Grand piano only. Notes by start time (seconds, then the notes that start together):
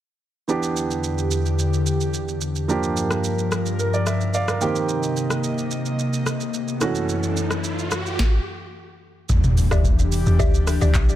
0.48 E3 B3 D4 G4
2.68 F3 A#3 D4 G4
3.79 A#4
3.94 D5
4.07 E5
4.34 D5 F5
4.48 A#4
4.60 D#3 A#3 C4 G4 G5
6.80 E3 A3 C#4 F#4